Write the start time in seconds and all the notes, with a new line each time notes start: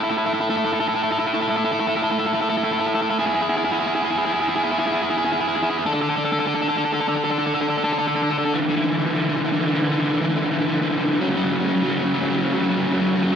0.03 E4 A4
0.09 E4 A4
0.17 E4 A4
0.26 E4 A4
0.33 E4 A4
0.40 E4 A4
0.50 E4 A4
0.57 E4 A4
0.65 E4 A4
0.73 E4 A4
0.80 E4 A4
0.88 E4 A4
0.95 E4 A4
1.03 E4 A4
1.11 E4 A4
1.19 E4 A4
1.26 E4 A4
1.34 E4 A4
1.41 E4 A4
1.48 E4 A4
1.56 E4 A4
1.64 E4 A4
1.72 E4 A4
1.80 E4 A4
1.87 E4 A4
1.95 E4 A4
2.02 E4 A4
2.10 E4 A4
2.18 E4 A4
2.26 E4 A4
2.33 E4 A4
2.40 E4 A4
2.49 E4 A4
2.57 E4 A4
2.64 E4 A4
2.71 E4 A4
2.79 E4 A4
2.87 E4 A4
2.94 E4 A4
3.02 E4 A4
3.10 E4 A4
3.19 E4 G#4
3.26 E4 G#4
3.34 E4 G#4
3.41 E4 G#4
3.49 E4 G#4
3.57 E4 G#4
3.65 E4 G#4
3.72 E4 G#4
3.80 E4 G#4
3.87 E4 G#4
3.95 E4 G#4
4.02 E4 G#4
4.11 E4 G#4
4.17 E4 G#4
4.25 E4 G#4
4.32 E4 G#4
4.40 E4 G#4
4.48 E4 G#4
4.56 E4 G#4
4.63 E4 G#4
4.71 E4 G#4
4.79 E4 G#4
4.87 E4 G#4
4.92 E4 G#4
5.02 E4 G#4
5.10 E4 G#4
5.17 E4 G#4
5.24 E4 G#4
5.32 E4 G#4
5.40 E4 G#4
5.48 E4 G#4
5.56 E4 G#4
5.62 E4 G#4
5.70 E4 G#4
5.78 E4 G#4
5.86 D4 A4
5.93 D4 A4
6.01 D4 A4
6.09 D4 A4
6.16 D4 A4
6.24 D4 A4
6.32 D4 A4
6.39 D4 A4
6.46 D4 A4
6.55 D4 A4
6.62 D4 A4
6.69 D4 A4
6.77 D4 A4
6.85 D4 A4
6.93 D4 A4
7.00 D4 A4
7.08 D4 A4
7.15 D4 A4
7.24 D4 A4
7.30 D4 A4
7.38 D4 A4
7.47 D4 A4
7.54 D4 A4
7.61 D4 A4
7.68 D4 A4
7.78 D4 A4
7.84 D4 A4
7.93 D4 A4
7.98 D4 A4
8.07 D4 A4
8.15 D4 A4
8.22 D4 A4
8.30 D4 A4
8.38 D4 A4
8.45 D4 A4
8.53 D3 E3
8.60 D3 E3
8.69 D3 E3
8.76 D3 E3
8.84 D3 E3
8.91 D3 E3
8.99 D3 E3
9.06 D3 E3
9.14 D3 E3
9.22 D3 E3
9.29 D3 E3
9.37 D3 E3
9.44 D3 E3
9.52 D3 E3
9.60 D3 E3
9.67 D3 E3
9.75 D3 E3
9.82 D3 E3
9.89 D3 E3
9.97 D3 E3
10.05 D3 E3
10.13 D3 E3
10.21 D3 E3
10.29 D3 E3
10.36 D3 E3
10.44 D3 E3
10.51 D3 E3
10.58 D3 E3
10.67 D3 E3
10.74 D3 E3
10.82 D3 E3
10.89 D3 E3
10.96 D3 E3
11.04 D3 E3
11.12 D3 E3
11.20 C#3 F#3
11.27 C#3 F#3
11.35 C#3 F#3
11.44 C#3 F#3
11.50 C#3 F#3
11.58 C#3 F#3
11.65 C#3 F#3
11.74 C#3 F#3
11.81 C#3 F#3
11.88 C#3 F#3
11.97 C#3 F#3
12.03 C#3 F#3
12.13 C#3 F#3
12.19 C#3 F#3
12.26 C#3 F#3
12.35 C#3 F#3
12.42 C#3 F#3
12.49 C#3
12.53 C#3 F#3
12.62 C#3 F#3
12.70 C#3 F#3
12.76 C#3 F#3
12.84 C#3 F#3
12.92 C#3 F#3
13.00 C#3 F#3
13.07 C#3 F#3
13.16 C#3 F#3
13.23 C#3 F#3
13.32 F#3